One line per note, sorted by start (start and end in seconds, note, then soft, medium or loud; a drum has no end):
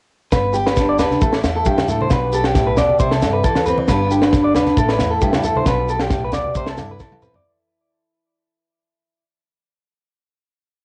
0.32 1.03 G1 medium
0.32 0.53 B4 medium
0.32 muted steel-string acoustic guitar stroke medium
0.32 kick medium
0.32 snare medium
0.32 low agogo medium
0.32 shekere loud
0.53 0.65 G4 medium
0.53 1.19 G4 medium
0.53 shekere medium
0.66 0.88 B4 medium
0.66 snare medium
0.66 low agogo medium
0.76 1.22 D3 medium
0.76 kick medium
0.76 snare medium
0.76 low conga medium
0.76 shekere medium
0.89 0.99 D5 medium
0.99 1.20 D4 medium
0.99 1.21 B4 medium
0.99 snare medium
0.99 high conga medium
0.99 low conga medium
0.99 low agogo medium
0.99 shekere medium
1.11 snare soft
1.11 high conga medium
1.21 1.40 A1 medium
1.21 1.87 A2 medium
1.21 1.32 A4 medium
1.21 kick medium
1.21 shekere medium
1.33 muted clean electric guitar stroke medium
1.33 snare medium
1.44 1.61 E2 loud
1.44 2.11 E4 medium
1.44 snare medium
1.44 low agogo medium
1.44 shekere medium
1.56 1.66 A4 medium
1.65 1.88 G2 medium
1.65 1.88 G4 medium
1.65 kick medium
1.65 shekere medium
1.78 snare medium
1.78 high conga medium
1.78 low agogo medium
1.88 2.10 A2 medium
1.88 2.00 A4 medium
1.88 low conga medium
1.88 shekere medium
2.01 2.11 C5 medium
2.01 high conga medium
2.10 2.82 B1 medium
2.10 2.55 B2 medium
2.10 2.33 B4 medium
2.10 kick medium
2.10 snare medium
2.10 low agogo medium
2.10 shekere medium
2.33 2.97 G4 medium
2.33 2.45 A4 medium
2.33 shekere medium
2.44 2.67 G4 medium
2.44 snare medium
2.44 low agogo medium
2.55 2.78 A2 medium
2.55 kick medium
2.55 snare medium
2.55 low conga medium
2.55 shekere medium
2.67 2.77 B4 medium
2.77 3.00 B2 medium
2.77 2.99 D5 medium
2.77 snare medium
2.77 high conga medium
2.77 low conga medium
2.77 low agogo medium
2.77 shekere medium
2.90 high conga medium
2.99 3.18 C2 loud
2.99 3.45 C3 medium
2.99 3.11 C5 medium
2.99 kick medium
2.99 shekere medium
3.11 3.32 A4 medium
3.11 snare medium
3.22 3.40 G2 loud
3.22 muted steel-string acoustic guitar stroke medium
3.22 snare medium
3.22 high conga medium
3.22 low agogo medium
3.22 shekere medium
3.33 3.43 B4 medium
3.44 3.86 E3 medium
3.44 3.65 A4 medium
3.44 kick medium
3.44 shekere medium
3.55 snare medium
3.55 high conga medium
3.55 low agogo medium
3.66 3.87 C4 medium
3.66 3.77 B4 medium
3.66 low conga medium
3.66 shekere medium
3.78 muted clean electric guitar stroke medium
3.78 high conga medium
3.88 4.60 G1 medium
3.88 4.76 G2 medium
3.88 4.32 D3 medium
3.88 4.76 B3 medium
3.88 4.10 B4 medium
3.88 kick medium
3.88 snare medium
3.88 low agogo medium
3.88 shekere loud
3.92 4.56 D4 medium
3.92 4.11 G4 medium
4.11 4.22 G4 medium
4.11 4.76 G4 medium
4.11 shekere medium
4.22 4.44 B4 medium
4.22 snare medium
4.22 low agogo medium
4.32 4.78 D3 medium
4.32 kick medium
4.32 snare medium
4.32 low conga medium
4.32 shekere medium
4.44 4.55 D5 medium
4.55 4.76 D4 medium
4.55 4.77 B4 medium
4.55 snare medium
4.55 high conga medium
4.55 low conga medium
4.55 low agogo medium
4.55 shekere medium
4.66 snare soft
4.66 high conga medium
4.77 4.95 A1 medium
4.77 5.45 A2 medium
4.77 4.89 A4 medium
4.77 kick medium
4.77 shekere medium
4.89 5.10 B4 medium
4.89 snare medium
4.99 5.18 E2 medium
4.99 5.67 E4 medium
4.99 snare medium
4.99 high conga medium
4.99 low agogo medium
4.99 shekere medium
5.11 5.21 A4 medium
5.21 5.45 G2 medium
5.21 5.43 G4 medium
5.21 kick medium
5.21 shekere medium
5.33 snare medium
5.33 high conga medium
5.33 low agogo medium
5.43 5.66 A2 medium
5.43 5.56 A4 medium
5.43 low conga medium
5.43 shekere medium
5.55 5.67 C5 medium
5.55 high conga medium
5.66 6.37 B1 loud
5.66 6.11 B2 medium
5.66 5.88 B4 medium
5.66 kick medium
5.66 snare medium
5.66 low agogo medium
5.66 shekere medium
5.89 6.53 G4 medium
5.89 6.01 A4 medium
5.89 shekere medium
5.99 6.23 G4 medium
5.99 snare medium
5.99 low agogo medium
6.10 6.31 A2 medium
6.10 kick medium
6.10 snare medium
6.10 low conga medium
6.10 shekere medium
6.25 6.33 B4 medium
6.32 6.55 B2 medium
6.32 6.55 D5 medium
6.32 snare medium
6.32 high conga medium
6.32 low conga medium
6.32 low agogo medium
6.32 shekere medium
6.44 high conga medium
6.55 6.74 C2 medium
6.55 7.00 C3 medium
6.55 6.68 C5 medium
6.55 kick medium
6.55 shekere medium
6.66 6.90 A4 medium
6.66 snare medium
6.77 6.96 G2 medium
6.77 9.23 E4 medium
6.77 snare medium
6.77 high conga medium
6.77 low agogo medium
6.77 shekere medium
6.89 7.01 B4 medium
6.89 high conga soft
7.00 7.42 E3 medium
7.00 7.22 A4 medium
7.00 kick medium
7.00 snare medium
7.00 high conga medium
7.00 shekere medium
7.11 high tom soft
7.11 high conga medium
7.11 low agogo medium
7.22 7.42 C4 medium
7.22 7.34 B4 medium
7.22 mid tom medium
7.22 low conga medium
7.22 shekere medium
7.34 7.45 D5 medium
7.34 floor tom medium
7.34 low conga medium